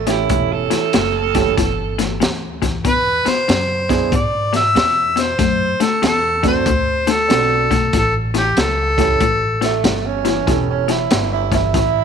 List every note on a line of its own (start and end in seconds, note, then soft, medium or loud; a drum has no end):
0.00 0.28 A1 medium
0.00 0.11 A3 medium
0.07 0.28 A2 medium
0.07 0.28 E3 medium
0.07 0.89 A3 medium
0.07 0.89 C#4 medium
0.07 0.89 E4 medium
0.07 0.54 E4 medium
0.07 0.90 G4 medium
0.07 snare soft
0.07 closed hi-hat medium
0.29 0.68 E1 medium
0.29 0.67 A2 medium
0.29 0.67 E3 medium
0.29 kick loud
0.29 closed hi-hat medium
0.53 2.39 A4 medium
0.70 0.91 A2 medium
0.70 0.91 E3 medium
0.70 muted upright bass stroke soft
0.70 snare soft
0.70 closed hi-hat medium
0.93 1.56 F#1 medium
0.93 1.31 A2 medium
0.93 1.31 F#3 loud
0.93 snare loud
0.93 closed hi-hat medium
1.34 1.55 A2 medium
1.34 1.56 E3 medium
1.34 1.55 A3 medium
1.34 1.55 C#4 medium
1.34 1.55 E4 medium
1.34 1.55 G4 medium
1.34 kick medium
1.34 snare soft
1.34 closed hi-hat medium
1.57 2.19 G1 medium
1.57 1.94 A2 medium
1.57 1.95 E3 medium
1.57 kick loud
1.57 snare soft
1.57 closed hi-hat medium
1.98 2.19 A2 medium
1.98 2.19 E3 medium
1.98 snare soft
1.98 closed hi-hat medium
2.20 2.82 D2 medium
2.20 2.58 A2 medium
2.20 2.58 E3 medium
2.20 snare medium
2.20 closed hi-hat medium
2.62 2.82 A2 medium
2.62 2.82 E3 medium
2.62 kick medium
2.62 snare soft
2.62 closed hi-hat medium
2.85 3.21 E2 medium
2.85 3.23 E2 medium
2.85 3.22 B2 medium
2.85 3.29 B4 medium
2.85 kick loud
2.85 closed hi-hat medium
3.25 3.46 E2 medium
3.25 3.46 B2 medium
3.25 4.17 C5 medium
3.25 muted upright bass stroke soft
3.25 snare soft
3.25 closed hi-hat medium
3.48 3.85 E2 medium
3.48 4.10 F#2 medium
3.48 3.85 C#3 medium
3.48 snare loud
3.48 closed hi-hat medium
3.89 4.10 E2 medium
3.89 4.10 B2 medium
3.89 4.09 B3 medium
3.89 4.10 D4 medium
3.89 4.10 E4 medium
3.89 4.10 G#4 medium
3.89 kick medium
3.89 snare soft
3.89 closed hi-hat medium
4.12 4.49 E2 medium
4.12 4.73 G#2 medium
4.12 4.49 B2 medium
4.12 kick loud
4.12 closed hi-hat medium
4.16 4.55 D5 loud
4.53 4.73 E2 medium
4.53 4.73 B2 medium
4.53 5.22 E5 loud
4.53 snare soft
4.53 closed hi-hat medium
4.75 5.12 E2 medium
4.75 5.37 E2 medium
4.75 5.12 B2 medium
4.75 snare loud
4.75 closed hi-hat medium
5.16 5.36 E2 medium
5.16 5.37 B2 medium
5.16 snare soft
5.16 closed hi-hat medium
5.20 5.84 C5 medium
5.39 5.77 F#2 medium
5.39 5.76 D3 medium
5.39 5.76 A3 medium
5.39 kick medium
5.39 snare soft
5.39 closed hi-hat medium
5.79 6.00 D3 medium
5.79 6.00 A3 medium
5.79 6.04 A4 medium
5.79 muted upright bass stroke soft
5.79 snare soft
5.79 closed hi-hat medium
6.02 6.64 E2 medium
6.02 6.39 D3 medium
6.02 6.39 B3 medium
6.02 snare loud
6.02 closed hi-hat medium
6.07 6.43 A4 medium
6.43 6.63 D3 medium
6.43 6.64 A3 medium
6.43 6.64 C4 medium
6.43 6.64 D4 medium
6.43 6.64 F#4 medium
6.43 6.64 A4 medium
6.43 kick medium
6.43 snare soft
6.43 closed hi-hat medium
6.47 7.13 C5 medium
6.66 7.28 D2 medium
6.66 7.03 D3 medium
6.66 7.03 A3 medium
6.66 kick loud
6.66 closed hi-hat medium
7.07 7.27 D3 medium
7.07 7.28 A3 medium
7.07 snare soft
7.07 closed hi-hat medium
7.11 7.95 A4 loud
7.28 7.91 B1 medium
7.28 7.67 D3 medium
7.28 7.67 A3 medium
7.28 7.66 C4 medium
7.28 7.66 D4 medium
7.28 7.66 F#4 medium
7.28 7.66 A4 medium
7.28 snare medium
7.28 closed hi-hat medium
7.71 7.91 D3 medium
7.71 7.91 A3 medium
7.71 kick medium
7.71 snare soft
7.71 closed hi-hat medium
7.93 8.55 A1 medium
7.93 8.30 A2 medium
7.93 8.30 E3 medium
7.93 kick loud
7.93 snare soft
7.93 closed hi-hat medium
7.98 8.14 A4 medium
8.34 8.54 A2 medium
8.34 8.55 E3 medium
8.34 8.62 G4 medium
8.34 snare soft
8.34 closed hi-hat medium
8.57 9.18 C#2 medium
8.57 8.94 A2 medium
8.57 8.94 F#3 medium
8.57 9.85 A4 medium
8.57 snare loud
8.57 closed hi-hat medium
8.97 9.18 A2 medium
8.97 9.19 E3 medium
8.97 9.18 C#4 medium
8.97 9.18 E4 medium
8.97 9.18 G4 medium
8.97 9.18 A4 medium
8.97 kick medium
8.97 snare soft
8.97 closed hi-hat medium
9.21 9.82 A1 medium
9.21 9.57 A2 medium
9.21 9.58 E3 medium
9.21 kick loud
9.21 closed hi-hat medium
9.61 9.81 A2 medium
9.61 9.82 E3 medium
9.61 10.08 A3 medium
9.61 snare soft
9.61 closed hi-hat medium
9.84 10.45 G1 medium
9.84 10.21 A2 medium
9.84 10.21 E3 medium
9.84 snare medium
9.84 closed hi-hat medium
10.06 10.67 C#4 medium
10.25 10.45 A2 medium
10.25 10.45 E3 medium
10.25 snare soft
10.25 closed hi-hat medium
10.47 11.09 E1 medium
10.47 10.84 A2 medium
10.47 10.84 E3 medium
10.47 10.84 C#4 medium
10.47 10.84 E4 soft
10.47 10.84 G4 soft
10.47 10.84 A4 medium
10.47 kick loud
10.47 snare soft
10.47 closed hi-hat medium
10.70 10.93 C#4 medium
10.88 11.08 A2 medium
10.88 11.09 E3 medium
10.88 11.31 E4 medium
10.88 snare soft
10.88 closed hi-hat medium
11.11 11.72 G1 medium
11.11 11.48 A2 medium
11.11 11.48 F#3 medium
11.11 snare loud
11.11 closed hi-hat medium
11.33 11.53 E4 medium
11.52 11.72 A2 medium
11.52 11.72 E3 medium
11.52 12.04 E4 medium
11.52 kick medium
11.52 snare soft
11.52 closed hi-hat medium
11.74 12.04 A1 medium
11.74 12.04 A2 medium
11.74 12.04 E3 medium
11.74 kick medium
11.74 snare soft
11.74 closed hi-hat medium